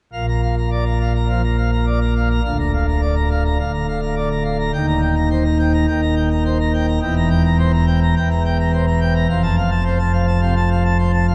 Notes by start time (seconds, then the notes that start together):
0.13 A#1 A#2 F5
0.28 A#5
0.42 F5
0.57 A#5
0.71 D5
0.85 A#5
1.00 F5
1.15 A#5
1.29 F3 F5
1.43 A#5
1.58 F5
1.73 A#5
1.86 D5
2.01 A#5
2.16 F5
2.30 A#5
2.44 D1 D2 F5
2.59 A#5
2.74 F5
2.88 A#5
3.02 D5
3.16 A#5
3.30 F5
3.46 A#5
3.59 D1 D2 F5
3.74 A#5
3.88 F5
4.02 A#5
4.16 D5
4.31 A#5
4.44 F5
4.59 A#5
4.73 D#1 D#2 G5
4.88 A#5
5.02 G5
5.15 A#5
5.31 C5
5.45 A#5
5.59 G5
5.73 A#5
5.88 D#1 D#2 G5
6.02 A#5
6.16 G5
6.31 A#5
6.45 C5
6.60 A#5
6.74 G5
6.87 A#5
7.02 E1 E2 G5
7.16 A#5
7.30 G5
7.45 A#5
7.59 C5
7.73 A#5
7.87 G5
8.02 A#5
8.16 E1 E2 G5
8.30 A#5
8.45 G5
8.59 A#5
8.73 C5
8.87 A#5
9.01 G5
9.16 A#5
9.29 F1 F2 F5
9.43 A5
9.57 F5
9.71 A5
9.85 C5
9.99 A5
10.13 F5
10.27 A5
10.41 C3 F5
10.57 A5
10.71 F5
10.84 A5
10.99 C5
11.14 A5
11.27 F5